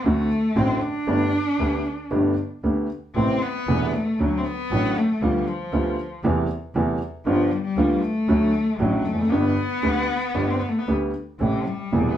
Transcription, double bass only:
0.05 0.26 D2 medium
0.56 0.77 A1 medium
1.08 1.29 G1 medium
1.59 1.81 D2 medium
2.11 2.33 G1 medium
2.63 2.85 D2 medium
3.15 3.37 A1 medium
3.67 3.89 E1 medium
4.19 4.41 D2 medium
4.71 4.92 A1 medium
5.22 5.43 D2 medium
5.72 5.94 D2 medium
6.23 6.45 E2 medium
6.74 6.96 E2 medium
7.26 7.47 G1 medium
7.77 7.98 D2 medium
8.28 8.50 D2 medium
8.80 9.01 A1 medium
9.05 9.30 F1 soft
9.31 9.53 G1 medium
9.83 10.05 D2 medium
10.35 10.57 G1 medium
10.87 11.09 D2 medium
11.40 11.62 A1 medium
11.92 12.14 E1 medium

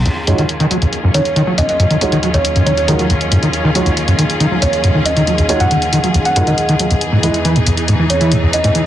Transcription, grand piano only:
0.27 0.39 G#3 medium
0.27 0.39 D#4 medium
0.27 0.39 F4 medium
0.27 0.39 F#4 medium
0.27 0.39 C#5 medium
2.01 2.13 G#3 medium
2.01 2.13 D#4 medium
2.01 2.13 F4 medium
2.01 2.13 F#4 medium
2.01 2.13 C#5 loud
2.88 3.00 G#3 medium
2.88 3.00 D#4 medium
2.88 3.00 F4 medium
2.88 3.00 F#4 medium
2.88 3.00 A#4 medium
3.75 3.87 G#3 medium
3.75 3.87 D#4 medium
3.75 3.87 F4 medium
3.75 3.87 F#4 medium
3.75 3.87 C#5 medium
5.49 5.61 G#3 medium
5.49 5.61 D#4 medium
5.49 5.61 F4 medium
5.49 5.61 F#4 medium
5.49 5.61 C#5 loud
6.36 6.48 G#3 medium
6.36 6.48 D#4 medium
6.36 6.48 F4 medium
6.36 6.48 F#4 medium
6.36 6.48 A#4 medium
7.23 7.35 G#3 medium
7.23 7.35 E4 medium
7.23 7.35 D#5 medium

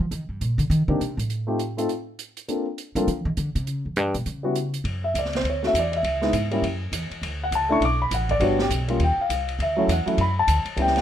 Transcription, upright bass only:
0.00 0.11 F3 medium
0.11 0.28 D#3 medium
0.29 0.40 G2 medium
0.41 0.57 A#2 medium
0.58 0.69 D3 medium
0.70 0.87 D#3 medium
0.88 1.00 D3 medium
1.01 1.17 C3 medium
1.17 1.85 A2 medium
2.95 3.07 G3 medium
3.07 3.25 F3 medium
3.25 3.37 D#3 medium
3.37 3.55 D3 medium
3.55 3.67 C3 medium
3.67 3.85 C#3 medium
3.85 3.97 E2 soft
3.97 4.14 G2 medium
4.15 4.25 B2 medium
4.26 4.76 C#3 medium
4.84 5.13 F#2 medium
5.14 5.43 C#2 medium
5.44 5.73 D2 medium
5.74 6.02 E2 medium
6.03 6.32 C#2 medium
6.33 6.62 G#2 medium
6.62 6.91 F#2 medium
6.92 7.09 E2 medium
7.10 muted upright bass stroke soft
7.22 7.51 D2 medium
7.51 7.80 C#2 medium
7.80 8.10 B1 medium
8.11 8.39 A1 medium
8.40 8.69 G1 medium
8.70 8.99 B1 medium
8.99 9.17 D#2 medium
9.17 muted upright bass stroke soft
9.29 9.58 C2 medium
9.59 9.87 D2 medium
9.88 10.05 E2 medium
10.06 muted upright bass stroke soft
10.17 10.47 F#2 medium
10.47 10.65 D2 medium
10.65 muted upright bass stroke soft
10.76 11.02 C#2 medium

